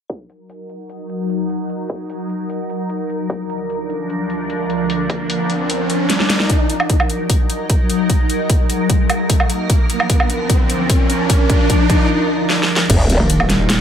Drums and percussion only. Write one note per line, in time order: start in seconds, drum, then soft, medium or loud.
0.10 kick loud
0.10 closed hi-hat medium
0.30 closed hi-hat soft
0.50 closed hi-hat medium
0.69 closed hi-hat soft
0.90 closed hi-hat medium
1.10 closed hi-hat soft
1.30 closed hi-hat medium
1.50 closed hi-hat soft
1.70 closed hi-hat medium
1.90 kick medium
1.90 closed hi-hat soft
2.10 closed hi-hat medium
2.30 closed hi-hat soft
2.50 closed hi-hat medium
2.70 closed hi-hat soft
2.90 closed hi-hat medium
3.10 closed hi-hat soft
3.30 kick loud
3.30 closed hi-hat medium
3.50 closed hi-hat soft
3.70 closed hi-hat medium
3.90 closed hi-hat soft
4.10 closed hi-hat medium
4.30 closed hi-hat soft
4.50 closed hi-hat medium
4.70 closed hi-hat soft
4.90 closed hi-hat medium
5.10 kick loud
5.10 closed hi-hat soft
5.30 closed hi-hat medium
5.50 closed hi-hat soft
5.70 closed hi-hat medium
5.90 closed hi-hat soft
6.10 snare medium
6.10 closed hi-hat medium
6.20 snare medium
6.30 snare medium
6.30 closed hi-hat soft
6.40 snare medium
6.50 kick medium
6.50 closed hi-hat medium
6.70 closed hi-hat soft
6.80 low woodblock medium
6.90 kick medium
6.90 closed hi-hat medium
7.00 low woodblock medium
7.10 closed hi-hat soft
7.30 kick medium
7.30 closed hi-hat medium
7.50 closed hi-hat soft
7.70 kick medium
7.70 closed hi-hat medium
7.90 closed hi-hat medium
8.10 kick medium
8.10 closed hi-hat medium
8.30 closed hi-hat soft
8.50 kick medium
8.50 closed hi-hat medium
8.70 closed hi-hat soft
8.90 kick medium
8.90 closed hi-hat medium
9.10 closed hi-hat medium
9.10 low woodblock medium
9.30 kick loud
9.30 closed hi-hat medium
9.40 low woodblock medium
9.50 closed hi-hat medium
9.70 kick loud
9.70 closed hi-hat medium
9.90 closed hi-hat soft
10.00 low woodblock medium
10.10 kick loud
10.10 closed hi-hat medium
10.20 low woodblock medium
10.30 closed hi-hat medium
10.50 kick loud
10.50 closed hi-hat medium
10.70 closed hi-hat medium
10.90 kick loud
10.90 closed hi-hat medium
11.10 closed hi-hat medium
11.30 kick loud
11.30 closed hi-hat medium
11.50 kick loud
11.50 closed hi-hat soft
11.70 kick loud
11.70 closed hi-hat medium
11.90 kick loud
11.90 closed hi-hat medium
12.50 snare medium
12.63 snare medium
12.76 snare loud
12.90 kick loud
12.90 closed hi-hat medium
12.90 crash loud
13.10 closed hi-hat medium
13.30 closed hi-hat medium
13.40 low woodblock medium
13.50 snare medium
13.50 closed hi-hat medium
13.70 snare loud
13.70 closed hi-hat medium